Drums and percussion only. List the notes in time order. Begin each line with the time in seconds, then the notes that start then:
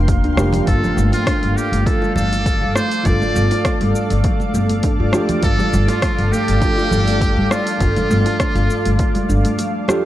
0.08 kick, open hi-hat, shaker
0.24 open hi-hat, shaker
0.37 cross-stick, high conga, shaker
0.53 open hi-hat, low conga, shaker
0.67 kick, open hi-hat, shaker
0.83 high conga, low conga, shaker
0.98 shaker
1.12 open hi-hat, high bongo, shaker
1.27 kick, cross-stick, open hi-hat, shaker
1.43 open hi-hat
1.58 shaker
1.73 open hi-hat, shaker
1.86 kick, open hi-hat, shaker
2.02 high bongo, shaker
2.16 high bongo, low conga, shaker
2.33 open hi-hat, shaker
2.46 kick, open hi-hat, shaker
2.76 cross-stick, high bongo, shaker
2.91 open hi-hat, shaker
3.05 kick, open hi-hat, shaker
3.22 high conga, shaker
3.36 shaker
3.51 open hi-hat, high bongo, shaker
3.65 kick, cross-stick, open hi-hat, shaker
3.81 open hi-hat
3.95 shaker
4.10 open hi-hat, shaker
4.24 kick, open hi-hat, shaker
4.40 high conga, shaker
4.54 shaker
4.69 open hi-hat, high conga, shaker
4.83 kick, open hi-hat, shaker
5.13 cross-stick, high conga, shaker
5.29 open hi-hat, low conga, shaker
5.43 kick, open hi-hat, shaker
5.59 high conga, low conga, shaker
5.73 shaker
5.88 open hi-hat, high bongo, shaker
6.02 kick, cross-stick, open hi-hat, shaker
6.18 open hi-hat
6.33 shaker
6.48 open hi-hat, shaker
6.62 kick, open hi-hat, shaker
6.78 high bongo, shaker
6.91 high bongo, low conga, shaker
7.08 open hi-hat, shaker
7.21 kick, open hi-hat, shaker
7.51 cross-stick, high bongo, shaker
7.67 open hi-hat, shaker
7.80 kick, open hi-hat, shaker
7.97 open hi-hat, high bongo, high conga, low conga, shaker
8.11 shaker
8.26 open hi-hat, high bongo, shaker
8.40 kick, cross-stick, open hi-hat, shaker
8.56 open hi-hat, shaker
8.70 shaker
8.86 open hi-hat, shaker
8.99 kick, open hi-hat, shaker
9.15 open hi-hat, high conga, shaker
9.30 shaker
9.45 open hi-hat, high conga, shaker
9.59 open hi-hat, shaker
9.88 cross-stick, high conga, shaker